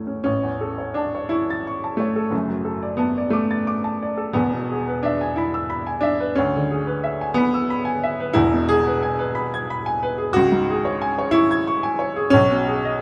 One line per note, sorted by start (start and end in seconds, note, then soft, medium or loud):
0.00 0.22 A1 soft
0.00 0.28 E2 soft
0.00 0.29 A3 soft
0.00 0.07 C#4 soft
0.00 0.29 E4 soft
0.07 0.22 C#4 soft
0.24 2.28 A1 medium
0.24 0.95 C#4 medium
0.43 0.71 E2 soft
0.61 0.89 A4 soft
0.78 1.07 C#5 soft
0.94 1.30 D4 medium
0.94 1.25 A5 soft
1.15 1.42 C#5 soft
1.29 1.98 E4 medium
1.29 1.59 C#6 medium
1.50 1.77 A6 soft
1.67 1.93 C#6 medium
1.84 2.10 A5 soft
1.97 2.98 A3 medium
1.97 2.26 C#5 medium
2.16 2.32 A4 soft
2.31 4.31 F#1 medium
2.31 4.31 F#2 medium
2.48 2.75 F#3 soft
2.65 2.92 A4 soft
2.83 3.09 D5 soft
2.97 3.31 B3 medium
2.97 3.26 A5 soft
3.18 3.44 D5 medium
3.30 4.34 A3 medium
3.30 3.60 D6 medium
3.51 3.77 A6 medium
3.67 3.94 D6 medium
3.84 4.11 A5 medium
4.02 4.29 D5 medium
4.17 4.35 A4 soft
4.33 6.32 E1 medium
4.33 6.33 E2 medium
4.33 5.03 B3 medium
4.53 4.80 B2 soft
4.71 4.98 G#4 soft
4.88 5.14 B4 medium
5.03 5.36 D4 medium
5.03 5.31 E5 medium
5.21 5.47 G#5 medium
5.36 6.03 E4 medium
5.36 5.64 B5 medium
5.54 5.80 E6 medium
5.70 5.97 B5 medium
5.87 6.13 G#5 medium
6.01 6.35 D4 medium
6.01 6.30 E5 medium
6.20 6.37 B4 medium
6.35 8.32 D2 medium
6.35 7.34 C#4 loud
6.56 6.81 D3 medium
6.71 6.96 G#4 medium
6.87 7.13 B4 medium
7.04 7.29 E5 medium
7.21 7.46 G#5 medium
7.34 8.35 B3 loud
7.34 7.63 B5 medium
7.54 7.79 E6 medium
7.70 7.96 B5 medium
7.85 8.12 G#5 medium
8.03 8.30 E5 medium
8.20 8.36 B4 medium
8.33 10.31 E1 medium
8.33 10.32 E2 medium
8.33 8.69 E4 loud
8.54 8.80 B2 medium
8.69 10.16 G#4 loud
8.87 9.14 B4 medium
9.03 9.30 G#5 medium
9.19 9.46 B4 medium
9.35 9.62 B5 medium
9.54 9.80 G#6 medium
9.70 9.96 B5 medium
9.86 10.12 G#5 medium
10.03 10.29 B4 medium
10.18 10.35 G#4 medium
10.33 12.30 C#2 medium
10.33 11.33 F#4 loud
10.52 10.79 G#2 medium
10.70 10.96 G#4 medium
10.85 11.11 C#5 medium
11.02 11.28 G#5 medium
11.18 11.44 C#5 medium
11.31 12.32 E4 loud
11.31 11.60 C#6 medium
11.51 11.77 G#6 medium
11.67 11.94 C#6 medium
11.83 12.10 G#5 medium
11.99 12.26 C#5 medium
12.16 12.33 G#4 medium
12.30 13.02 B1 medium
12.30 13.02 C#4 loud
12.51 12.78 B2 medium
12.67 12.96 G#4 medium
12.85 13.02 D#5 medium